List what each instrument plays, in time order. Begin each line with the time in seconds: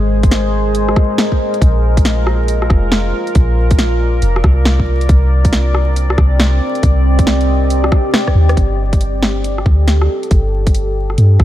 Already playing: 808-style bass G#1, ambient pad G#3 G#4 A#4 C5 D#5
0.23 kick, closed hi-hat
0.31 snare, closed hi-hat
0.75 closed hi-hat
0.89 cross-stick
0.96 kick, cross-stick
1.18 snare, closed hi-hat
1.32 kick
1.54 closed hi-hat
1.62 808-style bass A#1, ambient pad F4, kick, closed hi-hat
1.97 kick, closed hi-hat
2.05 snare, closed hi-hat
2.27 cross-stick
2.48 closed hi-hat
2.62 cross-stick
2.70 808-style bass F1, kick, cross-stick
2.85 ambient pad D5
2.92 snare, closed hi-hat
3.27 closed hi-hat
3.35 808-style bass A#1, kick, closed hi-hat
3.71 kick, closed hi-hat
3.79 snare, closed hi-hat
4.22 808-style bass F1, closed hi-hat
4.36 cross-stick
4.44 808-style bass C2, kick, cross-stick
4.65 snare, closed hi-hat
4.80 kick
5.01 closed hi-hat
5.09 808-style bass C2, ambient pad C4, kick, closed hi-hat
5.23 ambient pad G4
5.45 kick, closed hi-hat
5.53 snare, closed hi-hat
5.75 cross-stick
5.96 closed hi-hat
6.10 cross-stick
6.18 808-style bass C2, kick, cross-stick
6.40 snare, closed hi-hat
6.67 ambient pad D#5
6.75 closed hi-hat
6.83 808-style bass C2, kick, closed hi-hat
7.19 kick, closed hi-hat
7.27 snare, closed hi-hat
7.41 closed hi-hat
7.70 closed hi-hat
7.84 cross-stick
7.92 kick, cross-stick
8.14 cross-stick, snare, closed hi-hat
8.27 kick, cross-stick
8.35 808-style bass D#2
8.49 cross-stick, closed hi-hat
8.57 808-style bass G1, kick, closed hi-hat
8.93 kick, closed hi-hat
9.01 closed hi-hat
9.06 ambient pad A4
9.22 snare
9.44 closed hi-hat
9.58 cross-stick
9.66 808-style bass D2, kick
9.88 snare, closed hi-hat
10.02 cross-stick
10.23 closed hi-hat
10.31 808-style bass G1, kick, closed hi-hat
10.67 kick, closed hi-hat
10.74 closed hi-hat
11.10 cross-stick
11.18 808-style bass G2, closed hi-hat
11.40 808-style bass A1, kick, cross-stick